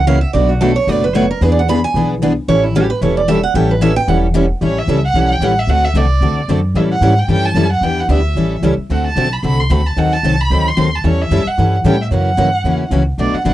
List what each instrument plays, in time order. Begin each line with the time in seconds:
Already playing: upright bass C#2
0.07 steel-string acoustic guitar C#3 E3 F#3 A#3 C#4 E4 F#4 A#4 F5
0.21 steel-string acoustic guitar E5
0.33 upright bass B1, steel-string acoustic guitar B2 F#3 A3 D4 F#4 B4 D5
0.49 steel-string acoustic guitar F#4
0.61 steel-string acoustic guitar B2 F#3 A3 D4 F#4 A4 B4
0.76 steel-string acoustic guitar C#5
0.87 upright bass F#1, steel-string acoustic guitar B2 F#3 A3 D4 F#4 B4 D5
1.04 steel-string acoustic guitar B4
1.14 steel-string acoustic guitar B2 F#3 A3 D4 F#4 B4 C#5
1.31 steel-string acoustic guitar A#4
1.41 upright bass E2, steel-string acoustic guitar E3 B3 D4 G#4 B4
1.52 steel-string acoustic guitar D5
1.59 steel-string acoustic guitar F#5
1.68 steel-string acoustic guitar E3 B3 D4 G#4 B4 B5
1.84 steel-string acoustic guitar G#5
1.94 upright bass B1, steel-string acoustic guitar E3 B3 D4 G#4 B4
2.22 steel-string acoustic guitar E3 B3 D4 G#4 B4
2.48 upright bass A1, steel-string acoustic guitar E3 G3 C#4 E4 A4 C#5
2.64 steel-string acoustic guitar E4
2.75 steel-string acoustic guitar E3 G3 C#4 E4 G4 A4
2.90 steel-string acoustic guitar B4
3.01 upright bass E1, steel-string acoustic guitar E3 G3 C#4 E4 A4 C#5
3.17 steel-string acoustic guitar D5
3.28 steel-string acoustic guitar E3 G3 C#4 E4 A4 E5
3.43 steel-string acoustic guitar F#5
3.54 upright bass A1, steel-string acoustic guitar E3 G3 C#4 E4 A4 G5
3.71 steel-string acoustic guitar B4
3.82 steel-string acoustic guitar E3 G3 C#4 E4 A4 E5
3.96 steel-string acoustic guitar G5
4.08 upright bass E1, steel-string acoustic guitar E3 G3 C#4 E4 A4 F#5
4.35 steel-string acoustic guitar E3 G3 C#4 E4 A4
4.61 upright bass A1, steel-string acoustic guitar E3 G3 C#4 E4 A4, violin C#5
4.78 violin E5
4.87 upright bass C#2, steel-string acoustic guitar E3 G3 C#4 E4 A4
5.05 violin F#5
5.14 upright bass B1, steel-string acoustic guitar E3 G3 C#4 E4 A4
5.32 violin G5
5.40 upright bass A1, steel-string acoustic guitar E3 G3 C#4 E4 A4, violin F#5
5.59 violin E5
5.67 upright bass D2, steel-string acoustic guitar D3 A3 C4 F#4 A4, violin F#5
5.85 violin E5
5.94 upright bass C2, steel-string acoustic guitar D3 A3 C4 F#4 A4, violin D5
6.21 upright bass D2, steel-string acoustic guitar D3 A3 C4 F#4 A4
6.48 upright bass F#2, steel-string acoustic guitar D3 A3 C4 F#4 A4
6.74 upright bass A2, steel-string acoustic guitar E3 G3 C#4 E4 A4, violin E5
6.91 violin F#5
7.01 upright bass G#2, steel-string acoustic guitar E3 G3 C#4 E4 A4
7.19 violin G5
7.28 upright bass G2, steel-string acoustic guitar E3 G3 C#4 E4 A4, violin G5
7.45 violin A5
7.55 upright bass F#2, steel-string acoustic guitar E3 G3 C#4 E4 A4
7.72 violin F#5
7.81 upright bass E2, steel-string acoustic guitar E3 G3 B3 D4 E4 G4 B4, violin G5
8.00 violin F#5
8.09 upright bass D2, steel-string acoustic guitar E3 G3 B3 D4 E4 G4 B4, violin E5
8.35 upright bass A1, steel-string acoustic guitar E3 G3 C#4 E4 A4
8.62 upright bass C#2, steel-string acoustic guitar E3 G3 C#4 E4 A4
8.78 muted upright bass stroke
8.90 upright bass D2, steel-string acoustic guitar D3 A3 C4 F#4 A4, violin F#5
9.07 violin A5
9.16 upright bass B1, steel-string acoustic guitar D3 A3 C4 F#4 A4
9.33 violin B5
9.43 upright bass C2, steel-string acoustic guitar D3 A3 C4 F#4 A4, violin B5
9.60 violin C6
9.70 upright bass D2, steel-string acoustic guitar D3 A3 C4 F#4 A4, violin B5
9.86 violin A5
9.96 upright bass D#2, steel-string acoustic guitar D#3 F#3 C4 D#4 A4, violin F#5
10.13 violin A5
10.23 upright bass C2, steel-string acoustic guitar D#3 F#3 C4 D#4 A4
10.41 violin B5
10.50 upright bass D2, steel-string acoustic guitar D#3 F#3 C4 D#4 A4
10.68 violin C6
10.77 upright bass D#2, steel-string acoustic guitar D#3 F#3 C4 D#4 A4
10.95 violin A5
11.04 upright bass E2, steel-string acoustic guitar E3 G3 C#4 E4 A4, violin C#5
11.22 violin E5
11.31 upright bass F#2, steel-string acoustic guitar E3 G3 C#4 E4 A4
11.46 violin F#5, muted upright bass stroke
11.58 upright bass G2, steel-string acoustic guitar E3 G3 C#4 E4 A4
11.84 upright bass A2, steel-string acoustic guitar E3 G3 C#4 E4 A4, violin G5
12.02 violin E5
12.11 upright bass F#2, steel-string acoustic guitar C#3 E3 F#3 A#3 C#4 E4 F#4 A#4, violin F#5
12.37 upright bass G2, steel-string acoustic guitar C#3 E3 F#3 A#3 C#4 E4 F#4 A#4
12.64 upright bass E2, steel-string acoustic guitar C#3 E3 F#3 A#3 C#4 E4 F#4 A#4
12.91 upright bass C#2, steel-string acoustic guitar C#3 E3 F#3 A#3 C#4 E4 F#4 A#4
13.18 upright bass B1, steel-string acoustic guitar B2 F#3 A3 D4 F#4 B4, violin D5
13.33 violin F#5, muted upright bass stroke
13.45 upright bass G1, steel-string acoustic guitar B2 F#3 A3 D4 F#4 B4, violin F#5